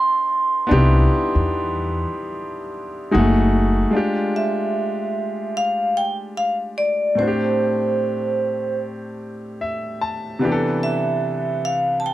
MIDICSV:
0, 0, Header, 1, 4, 480
1, 0, Start_track
1, 0, Tempo, 810811
1, 408, Time_signature, 4, 2, 24, 8
1, 7185, End_track
2, 0, Start_track
2, 0, Title_t, "Vibraphone"
2, 0, Program_c, 0, 11
2, 0, Note_on_c, 0, 84, 95
2, 1826, Note_off_c, 0, 84, 0
2, 2583, Note_on_c, 0, 76, 60
2, 3272, Note_off_c, 0, 76, 0
2, 3297, Note_on_c, 0, 77, 75
2, 3534, Note_on_c, 0, 79, 83
2, 3540, Note_off_c, 0, 77, 0
2, 3641, Note_off_c, 0, 79, 0
2, 3773, Note_on_c, 0, 77, 72
2, 3880, Note_off_c, 0, 77, 0
2, 4012, Note_on_c, 0, 74, 71
2, 4255, Note_on_c, 0, 72, 59
2, 4258, Note_off_c, 0, 74, 0
2, 5188, Note_off_c, 0, 72, 0
2, 6412, Note_on_c, 0, 76, 62
2, 6897, Note_on_c, 0, 77, 70
2, 6905, Note_off_c, 0, 76, 0
2, 7084, Note_off_c, 0, 77, 0
2, 7103, Note_on_c, 0, 81, 59
2, 7133, Note_off_c, 0, 81, 0
2, 7139, Note_on_c, 0, 79, 69
2, 7185, Note_off_c, 0, 79, 0
2, 7185, End_track
3, 0, Start_track
3, 0, Title_t, "Grand piano"
3, 0, Program_c, 1, 0
3, 0, Control_c, 1, 64, 127
3, 0, Note_on_c, 1, 59, 75
3, 0, Note_on_c, 1, 62, 78
3, 0, Note_on_c, 1, 64, 69
3, 0, Note_on_c, 1, 69, 90
3, 379, Note_off_c, 1, 59, 0
3, 385, Note_off_c, 1, 62, 0
3, 390, Note_off_c, 1, 64, 0
3, 396, Note_off_c, 1, 69, 0
3, 396, Note_on_c, 1, 59, 65
3, 407, Note_on_c, 1, 62, 65
3, 418, Note_on_c, 1, 63, 47
3, 428, Note_on_c, 1, 67, 72
3, 456, Note_on_c, 1, 64, 60
3, 458, Note_off_c, 1, 63, 0
3, 1818, Note_off_c, 1, 59, 0
3, 1824, Note_off_c, 1, 62, 0
3, 1835, Note_off_c, 1, 67, 0
3, 1843, Note_on_c, 1, 56, 54
3, 1848, Note_on_c, 1, 63, 63
3, 1849, Note_off_c, 1, 64, 0
3, 1855, Control_c, 1, 64, 0
3, 1855, Note_on_c, 1, 66, 66
3, 1860, Note_on_c, 1, 68, 73
3, 1883, Note_on_c, 1, 57, 70
3, 1891, Note_off_c, 1, 56, 0
3, 1952, Control_c, 1, 64, 127
3, 2314, Note_on_c, 1, 56, 59
3, 2326, Note_on_c, 1, 62, 59
3, 2328, Note_off_c, 1, 63, 0
3, 2332, Note_off_c, 1, 66, 0
3, 2334, Note_off_c, 1, 68, 0
3, 2336, Note_on_c, 1, 65, 58
3, 2337, Control_c, 1, 64, 0
3, 2346, Note_off_c, 1, 57, 0
3, 2347, Note_on_c, 1, 67, 71
3, 2433, Control_c, 1, 64, 127
3, 4217, Note_off_c, 1, 56, 0
3, 4223, Note_off_c, 1, 62, 0
3, 4229, Note_off_c, 1, 65, 0
3, 4234, Note_off_c, 1, 67, 0
3, 4235, Note_on_c, 1, 45, 52
3, 4242, Note_on_c, 1, 57, 49
3, 4251, Note_on_c, 1, 60, 51
3, 4257, Control_c, 1, 64, 0
3, 4259, Note_on_c, 1, 62, 48
3, 4268, Note_on_c, 1, 66, 51
3, 4303, Note_off_c, 1, 66, 0
3, 4307, Note_on_c, 1, 67, 64
3, 4363, Control_c, 1, 64, 127
3, 5690, Note_on_c, 1, 76, 56
3, 5912, Note_off_c, 1, 76, 0
3, 5929, Note_on_c, 1, 81, 63
3, 6138, Note_off_c, 1, 45, 0
3, 6142, Note_off_c, 1, 57, 0
3, 6146, Note_off_c, 1, 60, 0
3, 6150, Note_off_c, 1, 62, 0
3, 6152, Note_off_c, 1, 81, 0
3, 6152, Note_on_c, 1, 48, 65
3, 6162, Note_on_c, 1, 59, 62
3, 6170, Note_on_c, 1, 62, 61
3, 6174, Note_off_c, 1, 67, 0
3, 6176, Control_c, 1, 64, 0
3, 6178, Note_on_c, 1, 52, 62
3, 6186, Note_on_c, 1, 67, 58
3, 6222, Note_off_c, 1, 67, 0
3, 6226, Note_on_c, 1, 69, 75
3, 6295, Control_c, 1, 64, 127
3, 7185, Note_off_c, 1, 48, 0
3, 7185, Note_off_c, 1, 52, 0
3, 7185, Note_off_c, 1, 59, 0
3, 7185, Note_off_c, 1, 62, 0
3, 7185, Note_off_c, 1, 69, 0
3, 7185, End_track
4, 0, Start_track
4, 0, Title_t, "Upright bass"
4, 0, Program_c, 2, 32
4, 421, Note_on_c, 2, 36, 100
4, 621, Note_off_c, 2, 36, 0
4, 801, Note_on_c, 2, 40, 73
4, 1207, Note_off_c, 2, 40, 0
4, 1862, Note_on_c, 2, 30, 90
4, 2268, Note_off_c, 2, 30, 0
4, 7185, End_track
0, 0, End_of_file